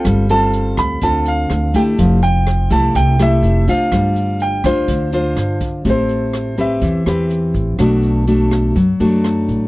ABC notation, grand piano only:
X:1
M:4/4
L:1/8
Q:1/4=124
K:Gmix
V:1 name="Grand piano"
z a2 b a f2 g | z g2 a g e2 f- | f2 g c4 z | [K:Ador] c3 e3 z2 |
z8 |]